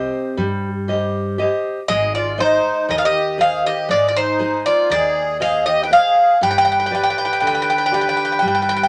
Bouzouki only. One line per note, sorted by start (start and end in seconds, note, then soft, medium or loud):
1.88 2.12 D#5 loud
2.15 2.40 D5 medium
2.40 2.90 C5 medium
2.91 2.97 D#5 medium
2.98 3.04 F5 medium
3.05 3.38 D#5 medium
3.41 3.64 F5 medium
3.66 3.90 D#5 medium
3.91 4.07 D5 medium
4.08 4.15 D5 medium
4.16 4.63 C5 medium
4.66 4.89 D5 medium
4.91 5.41 D5 medium
5.42 5.65 F5 medium
5.66 5.83 D#5 medium
5.83 5.91 G5 medium
5.93 6.43 F5 medium
6.43 6.49 G5 medium
6.51 6.57 G5 medium
6.58 6.64 G5 medium
6.65 6.71 G5 medium
6.72 6.78 G5 medium
6.80 6.85 G5 medium
6.86 6.93 G5 medium
6.95 7.01 G5 medium
7.03 7.09 G5 medium
7.10 7.17 G5 medium
7.18 7.24 G5 medium
7.25 7.32 G5 medium
7.33 7.39 G5 medium
7.40 7.46 G5 medium
7.47 7.53 G5 medium
7.55 7.61 G5 medium
7.62 7.69 G5 medium
7.70 7.77 G5 medium
7.78 7.85 G5 medium
7.86 7.92 G5 medium
7.94 8.00 G5 medium
8.01 8.08 G5 medium
8.09 8.15 G5 medium
8.17 8.23 G5 medium
8.25 8.31 G5 medium
8.32 8.38 G5 soft
8.39 8.45 G5 medium
8.48 8.53 G5 soft
8.55 8.61 G5 medium
8.62 8.68 G5 medium
8.69 8.75 G5 medium
8.76 8.82 G5 medium
8.83 8.88 G5 medium